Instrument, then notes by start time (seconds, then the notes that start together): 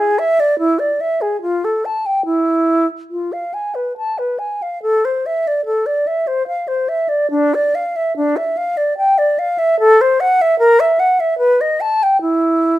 flute
0.00 G#4
0.19 E5
0.40 D5
0.59 E4
0.79 D5
1.01 E5
1.21 G#4
1.42 F4
1.65 A4
1.85 A5
2.06 G5
2.25 E4
3.11 F4
3.33 F5
3.54 G#5
3.75 B4
3.97 A5
4.18 B4
4.39 G#5
4.62 F5
4.82 A4
5.05 C5
5.26 E5
5.47 D5
5.65 A4
5.86 D5
6.07 E5
6.27 C5
6.47 F5
6.68 C5
6.89 E5
7.09 D5
7.31 D4
7.54 D5
7.75 F5
7.96 E5
8.17 D4
8.37 E5
8.57 F5
8.77 D5
8.98 G5
9.18 D5
9.39 F5
9.58 E5
9.80 A4
10.01 C5
10.20 F#5
10.42 E5
10.59 A#4
10.80 E5
11.00 F#5
11.20 E5
11.38 B4
11.61 D#5
11.81 A5
12.03 G5
12.21 E4